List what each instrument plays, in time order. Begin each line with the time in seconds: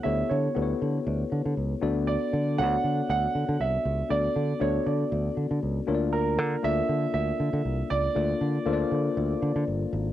Already playing: tine electric piano B3 E4 G4 A4 C#5
0.03 fingered electric bass D2, tine electric piano B3 E4 G4 A4 C#5, grand piano E5
0.29 fingered electric bass D3, grand piano C#5
0.55 fingered electric bass D2, tine electric piano B3 E4 G4 A4 B4
0.62 tine electric piano C#5
0.82 fingered electric bass D3
1.07 fingered electric bass D2
1.32 fingered electric bass D3
1.46 fingered electric bass D3
1.57 fingered electric bass C#2
1.81 fingered electric bass D2, tine electric piano B3 D4 F#4 A4 D5
2.07 grand piano D5
2.33 fingered electric bass D3
2.58 fingered electric bass D2, tine electric piano B3 D4 F#4 A4 C#5, grand piano F#5
2.65 tine electric piano D5
2.84 fingered electric bass D3
3.09 fingered electric bass D2, grand piano F#5
3.35 fingered electric bass D3
3.49 fingered electric bass D3
3.60 fingered electric bass C2, grand piano E5
3.85 fingered electric bass C#2
4.09 fingered electric bass D2, tine electric piano B3 D4 F#4 A4 D5, grand piano D5
4.36 fingered electric bass D3
4.60 fingered electric bass D2, tine electric piano B3 D4 F#4 A4 D5, grand piano C#5
4.86 fingered electric bass D3, grand piano D5
5.12 fingered electric bass D2
5.37 fingered electric bass D3
5.51 fingered electric bass D3
5.63 fingered electric bass C#2
5.87 fingered electric bass D2, tine electric piano A#3 D4 F4 A#4 C#5
5.95 tine electric piano D5
6.13 grand piano A#4
6.38 fingered electric bass D3
6.63 fingered electric bass D2, tine electric piano A#3 D4 F4 A4 D5, grand piano E5
6.89 fingered electric bass D3
7.14 fingered electric bass D2, grand piano E5
7.40 fingered electric bass D3
7.53 fingered electric bass D3
7.65 fingered electric bass C2
7.90 fingered electric bass C#2, grand piano D5
8.15 fingered electric bass D2, tine electric piano A#3 D4 F4 A4 D5
8.41 fingered electric bass D3
8.65 fingered electric bass D2, tine electric piano A#3 D4 F4 A4 C5
8.73 tine electric piano D5
8.92 fingered electric bass D3
9.17 fingered electric bass D2
9.42 fingered electric bass D3
9.56 fingered electric bass D3
9.67 fingered electric bass G1
9.93 fingered electric bass G#1